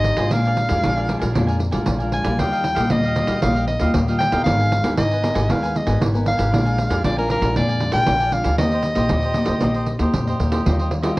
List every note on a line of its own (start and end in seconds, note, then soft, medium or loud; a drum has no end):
0.00 0.14 G#1 medium
0.00 0.30 D#3 medium
0.00 0.16 C4 medium
0.00 0.16 D#4 medium
0.00 0.17 G4 medium
0.00 0.19 C5 medium
0.00 0.18 D#5 medium
0.00 0.34 D#5 medium
0.00 0.17 G#5 medium
0.04 pandeiro medium
0.17 0.32 G#1 medium
0.17 0.67 G#3 medium
0.17 0.67 D4 medium
0.17 0.67 F4 medium
0.17 0.32 C5 medium
0.17 0.31 D#5 medium
0.17 0.31 G#5 medium
0.17 pandeiro medium
0.31 0.65 A#1 medium
0.31 0.82 A#2 medium
0.31 0.44 D4 soft
0.31 0.45 A#4 soft
0.31 0.45 D5 soft
0.31 1.36 F5 medium
0.31 0.45 G#5 soft
0.31 pandeiro medium
0.45 0.57 A#4 soft
0.45 0.58 D5 medium
0.45 0.57 G#5 medium
0.45 pandeiro soft
0.57 muted cavaquinho stroke soft
0.57 pandeiro soft
0.69 0.82 F2 medium
0.69 1.06 G#3 medium
0.69 1.06 D4 medium
0.69 1.06 F4 medium
0.69 0.83 A#4 soft
0.69 0.83 D5 medium
0.69 0.82 G#5 medium
0.69 pandeiro medium
0.83 1.17 A#1 medium
0.83 1.34 F3 soft
0.83 0.96 D4 soft
0.83 0.96 A#4 soft
0.83 0.96 D5 soft
0.83 0.95 G#5 soft
0.83 pandeiro medium
0.96 1.07 A#4 medium
0.96 1.08 D5 medium
0.96 1.08 G#5 medium
0.96 pandeiro soft
1.08 1.25 G#3 soft
1.08 1.21 D4 soft
1.08 1.25 D4 soft
1.08 1.26 F4 medium
1.08 1.20 A#4 soft
1.08 1.18 D5 soft
1.08 1.18 G#5 soft
1.08 pandeiro medium
1.19 1.37 A#1 medium
1.19 1.33 A#4 soft
1.19 1.33 D5 medium
1.19 1.33 G#5 medium
1.19 pandeiro medium
1.33 1.69 F2 medium
1.33 1.85 A#2 soft
1.33 1.60 G#3 medium
1.33 1.47 D4 soft
1.33 1.60 D4 soft
1.33 1.61 F4 medium
1.33 1.47 A#4 soft
1.33 1.47 D5 soft
1.33 1.46 G#5 medium
1.33 pandeiro medium
1.47 1.58 A#4 medium
1.47 1.58 D5 medium
1.47 1.58 G#5 medium
1.47 pandeiro soft
1.59 muted cavaquinho stroke soft
1.59 pandeiro soft
1.71 1.85 A#1 medium
1.71 1.96 G#3 medium
1.71 1.96 D4 medium
1.71 1.97 F4 medium
1.71 1.99 A#4 soft
1.71 1.98 D5 medium
1.71 1.97 G#5 medium
1.71 pandeiro medium
1.86 2.20 A#1 medium
1.86 2.37 F3 soft
1.86 pandeiro medium
1.99 2.23 G#3 medium
1.99 2.23 D4 medium
1.99 2.24 A#4 medium
1.99 2.23 D5 medium
1.99 2.22 G#5 medium
1.99 pandeiro soft
2.03 2.24 F4 medium
2.12 2.40 G#5 medium
2.12 pandeiro medium
2.23 2.41 A#1 medium
2.23 2.74 G3 medium
2.23 2.74 A#3 medium
2.23 2.38 A#4 soft
2.23 2.37 D5 medium
2.23 2.37 G#5 medium
2.23 pandeiro medium
2.27 2.74 F4 medium
2.38 2.72 D#2 medium
2.38 2.89 D#3 soft
2.38 2.51 F4 soft
2.38 2.51 G4 soft
2.38 2.51 D#5 soft
2.38 2.51 F5 soft
2.38 2.92 G5 medium
2.38 pandeiro medium
2.52 2.63 G4 soft
2.52 2.63 D#5 medium
2.52 2.63 F5 medium
2.52 pandeiro soft
2.63 muted cavaquinho stroke soft
2.63 pandeiro medium
2.74 2.88 A#1 medium
2.74 3.13 G3 medium
2.74 2.89 G4 soft
2.74 2.89 D#5 medium
2.74 2.88 F5 medium
2.74 pandeiro medium
2.79 3.13 A#3 medium
2.79 3.13 F4 medium
2.90 3.24 D#2 medium
2.90 3.41 A#2 medium
2.90 3.03 F4 soft
2.90 3.03 G4 soft
2.90 3.42 D#5 medium
2.90 3.03 D#5 soft
2.90 3.03 F5 soft
2.90 pandeiro medium
3.03 3.15 G4 soft
3.03 3.16 D#5 medium
3.03 3.16 F5 medium
3.03 pandeiro soft
3.15 3.39 G3 medium
3.15 3.39 A#3 soft
3.15 3.28 F4 soft
3.15 3.39 F4 medium
3.15 3.29 G4 soft
3.15 3.28 D#5 soft
3.15 3.27 F5 soft
3.15 pandeiro medium
3.27 3.45 D#2 medium
3.27 3.41 G4 soft
3.27 3.41 D#5 soft
3.27 3.41 F5 medium
3.27 pandeiro medium
3.41 3.76 A#1 medium
3.41 3.92 D#3 medium
3.41 3.67 G3 medium
3.41 3.67 A#3 medium
3.41 3.54 F4 soft
3.41 3.68 F4 medium
3.41 3.54 G4 soft
3.41 3.54 D#5 medium
3.41 3.67 F5 medium
3.41 3.54 F5 soft
3.41 pandeiro medium
3.55 3.68 G4 soft
3.55 3.68 D#5 medium
3.55 3.67 F5 medium
3.55 pandeiro soft
3.67 3.92 D#5 medium
3.67 muted cavaquinho stroke soft
3.67 pandeiro soft
3.80 3.92 D#2 medium
3.80 4.03 G3 soft
3.80 4.03 A#3 medium
3.80 4.03 F4 medium
3.80 4.07 G4 medium
3.80 4.07 D#5 medium
3.80 4.06 F5 medium
3.80 pandeiro medium
3.94 4.27 D#2 medium
3.94 4.44 A#2 medium
3.94 pandeiro medium
4.08 4.29 G3 medium
4.08 4.30 A#3 medium
4.08 4.30 F4 medium
4.08 4.33 G4 medium
4.08 4.32 D#5 medium
4.08 4.31 F5 medium
4.08 pandeiro soft
4.19 4.44 G5 medium
4.19 pandeiro medium
4.32 4.48 D#2 medium
4.32 4.80 B3 medium
4.32 4.80 D#4 soft
4.32 4.45 G4 medium
4.32 4.80 A#4 medium
4.32 4.45 D#5 medium
4.32 4.45 F5 medium
4.32 pandeiro medium
4.44 4.79 G#1 medium
4.44 4.95 G#3 medium
4.44 4.58 A#4 soft
4.44 4.59 B4 soft
4.44 4.93 F5 loud
4.44 pandeiro medium
4.48 4.59 G#5 soft
4.60 4.71 B4 soft
4.60 4.71 G#5 medium
4.60 pandeiro soft
4.72 muted cavaquinho stroke soft
4.72 pandeiro medium
4.83 4.95 D#2 medium
4.83 5.19 B3 medium
4.83 5.19 D#4 medium
4.83 5.19 A#4 medium
4.83 4.97 B4 soft
4.83 4.96 G#5 medium
4.83 pandeiro medium
4.98 5.31 G#1 medium
4.98 5.47 D#3 medium
4.98 5.10 A#4 soft
4.98 5.10 B4 soft
4.98 5.53 D#5 medium
4.98 5.10 G#5 soft
4.98 pandeiro medium
5.11 5.22 B4 soft
5.11 5.23 G#5 medium
5.11 pandeiro soft
5.22 5.38 B3 soft
5.22 5.38 D#4 medium
5.22 5.35 A#4 soft
5.22 5.39 A#4 medium
5.22 5.35 B4 soft
5.22 5.33 G#5 soft
5.22 pandeiro medium
5.34 5.51 G#1 medium
5.34 5.48 B4 soft
5.34 5.47 G#5 medium
5.34 pandeiro medium
5.49 5.82 D#2 medium
5.49 5.99 G#3 soft
5.49 5.74 B3 medium
5.49 5.74 D#4 medium
5.49 5.61 A#4 soft
5.49 5.74 A#4 medium
5.49 5.62 B4 soft
5.49 5.79 F5 medium
5.49 5.62 G#5 soft
5.49 pandeiro medium
5.63 5.75 B4 medium
5.63 5.74 G#5 medium
5.63 pandeiro soft
5.75 6.02 D#5 medium
5.75 muted cavaquinho stroke soft
5.75 pandeiro soft
5.86 5.99 G#1 medium
5.86 6.09 B3 medium
5.86 6.09 D#4 medium
5.86 6.10 A#4 medium
5.86 6.13 B4 medium
5.86 6.12 G#5 medium
5.86 pandeiro medium
6.01 6.35 G#1 medium
6.01 6.50 D#3 medium
6.01 pandeiro medium
6.14 6.49 B3 medium
6.14 6.49 D#4 medium
6.14 6.49 A#4 medium
6.14 6.38 B4 medium
6.14 6.36 G#5 medium
6.14 pandeiro soft
6.26 7.01 F5 medium
6.26 pandeiro medium
6.37 6.54 G#1 medium
6.37 6.51 B4 medium
6.37 6.50 G#5 medium
6.37 pandeiro medium
6.51 6.86 A#1 medium
6.51 7.02 A#2 medium
6.51 7.00 G#3 medium
6.51 6.64 D4 soft
6.51 7.00 D4 medium
6.51 7.01 F4 medium
6.51 6.64 A#4 soft
6.51 6.64 D5 soft
6.51 6.64 G#5 soft
6.51 pandeiro medium
6.65 6.78 A#4 soft
6.65 6.77 D5 medium
6.65 6.77 G#5 medium
6.65 pandeiro soft
6.78 muted cavaquinho stroke soft
6.78 pandeiro medium
6.90 7.02 F2 medium
6.90 7.03 A#4 medium
6.90 7.03 D5 medium
6.90 7.03 G#5 medium
6.90 pandeiro medium
7.04 7.37 A#1 medium
7.04 7.53 F3 medium
7.04 7.13 G#3 medium
7.04 7.16 D4 soft
7.04 7.13 D4 medium
7.04 7.14 F4 medium
7.04 7.16 A#4 medium
7.04 7.17 D5 soft
7.04 7.17 D5 medium
7.04 7.16 G#5 medium
7.04 pandeiro medium
7.17 7.26 G#3 medium
7.17 7.27 D4 medium
7.17 7.27 F4 medium
7.17 7.28 A#4 medium
7.17 7.30 A#4 medium
7.17 7.28 D5 medium
7.17 7.29 G#5 medium
7.17 pandeiro soft
7.28 7.39 G#3 soft
7.28 7.41 D4 soft
7.28 7.39 D4 medium
7.28 7.39 F4 medium
7.28 7.41 A#4 soft
7.28 7.55 A#4 medium
7.28 7.41 D5 soft
7.28 7.40 G#5 medium
7.28 pandeiro medium
7.41 7.58 A#1 medium
7.41 7.77 G#3 medium
7.41 7.77 D4 medium
7.41 7.77 F4 medium
7.41 7.55 A#4 soft
7.41 7.54 D5 medium
7.41 7.54 G#5 medium
7.41 pandeiro medium
7.56 7.89 F2 medium
7.56 8.05 A#2 medium
7.56 7.68 D4 soft
7.56 7.68 A#4 medium
7.56 7.68 D5 medium
7.56 7.93 D5 medium
7.56 7.67 G#5 medium
7.56 pandeiro medium
7.69 7.81 A#4 medium
7.69 7.81 D5 medium
7.69 7.81 G#5 medium
7.69 pandeiro soft
7.80 8.14 G#3 soft
7.80 8.15 D4 medium
7.80 8.15 F4 soft
7.80 muted cavaquinho stroke soft
7.80 pandeiro medium
7.92 8.05 A#1 medium
7.92 8.20 A#4 medium
7.92 8.19 D5 medium
7.92 8.35 G5 loud
7.92 8.19 G#5 medium
7.92 pandeiro medium
8.07 8.41 A#1 medium
8.07 8.57 F3 medium
8.07 pandeiro medium
8.20 8.45 A#4 soft
8.20 8.45 D5 medium
8.20 8.44 G#5 medium
8.20 pandeiro soft
8.32 8.48 G#3 soft
8.32 8.48 D4 soft
8.32 8.49 F4 medium
8.32 8.58 F5 medium
8.32 pandeiro medium
8.44 8.59 D2 medium
8.44 8.58 A#4 medium
8.44 8.58 D5 medium
8.44 8.57 G#5 medium
8.44 pandeiro medium
8.58 8.92 D#2 medium
8.58 9.08 D#3 medium
8.58 8.94 A#3 soft
8.58 8.94 C4 medium
8.58 8.71 D#4 soft
8.58 8.94 G4 medium
8.58 8.72 G4 soft
8.58 8.72 C5 soft
8.58 10.10 D#5 medium
8.58 8.71 D#5 soft
8.58 pandeiro medium
8.71 8.84 G4 soft
8.71 8.85 C5 medium
8.71 8.84 D#5 medium
8.71 pandeiro soft
8.83 muted cavaquinho stroke soft
8.83 pandeiro medium
8.95 9.08 A#1 medium
8.95 9.32 A#3 medium
8.95 9.32 C4 medium
8.95 9.32 G4 medium
8.95 9.10 G4 medium
8.95 9.09 C5 medium
8.95 9.09 D#5 medium
8.95 pandeiro medium
9.09 9.44 D#2 medium
9.09 9.60 A#2 medium
9.09 9.23 D#4 soft
9.09 9.23 G4 soft
9.09 9.23 C5 soft
9.09 9.22 D#5 soft
9.09 pandeiro medium
9.22 9.36 G4 medium
9.22 9.36 C5 medium
9.22 9.36 D#5 medium
9.22 pandeiro soft
9.34 9.52 A#3 soft
9.34 9.52 C4 medium
9.34 9.48 D#4 soft
9.34 9.48 G4 soft
9.34 9.52 G4 medium
9.34 9.47 C5 soft
9.34 pandeiro medium
9.39 9.46 D#5 medium
9.46 9.63 D#2 medium
9.46 9.61 G4 soft
9.46 9.61 C5 medium
9.46 9.60 D#5 medium
9.46 pandeiro medium
9.61 9.95 A#1 medium
9.61 10.11 D#3 soft
9.61 9.97 A#3 soft
9.61 9.97 C4 medium
9.61 9.74 D#4 soft
9.61 9.97 G4 medium
9.61 9.75 G4 soft
9.61 9.74 C5 soft
9.61 9.73 D#5 medium
9.61 pandeiro medium
9.75 9.87 G4 soft
9.75 9.87 C5 medium
9.75 9.87 D#5 medium
9.75 pandeiro soft
9.86 muted cavaquinho stroke soft
9.86 pandeiro soft
9.99 10.11 D#2 medium
9.99 10.22 A#3 medium
9.99 10.22 C4 medium
9.99 10.23 G4 medium
9.99 10.27 G4 medium
9.99 10.26 C5 medium
9.99 10.26 D#5 medium
9.99 pandeiro medium
10.14 10.37 F2 medium
10.14 10.63 A#2 medium
10.14 pandeiro medium
10.27 10.62 A#3 medium
10.27 10.62 C4 medium
10.27 10.62 G4 medium
10.27 10.53 G4 medium
10.27 10.52 C5 medium
10.27 10.51 D#5 medium
10.27 pandeiro soft
10.40 10.63 D#2 medium
10.40 pandeiro medium
10.52 10.65 G4 soft
10.52 10.65 C5 medium
10.52 10.64 D#5 medium
10.52 pandeiro medium
10.65 11.10 D#2 medium
10.65 11.15 D#3 soft
10.65 11.00 G3 medium
10.65 11.00 C4 medium
10.65 10.78 D#4 soft
10.65 11.01 F4 medium
10.65 10.78 G4 soft
10.65 10.78 C5 soft
10.65 10.78 D#5 soft
10.65 pandeiro medium
10.79 10.91 G4 medium
10.79 10.91 C5 medium
10.79 10.91 D#5 medium
10.79 pandeiro soft
10.91 muted cavaquinho stroke soft
10.91 pandeiro medium
11.02 11.19 G3 medium
11.02 11.19 C4 medium
11.02 11.19 F4 medium
11.02 11.16 G4 medium
11.02 11.16 C5 medium
11.02 11.15 D#5 medium
11.02 pandeiro medium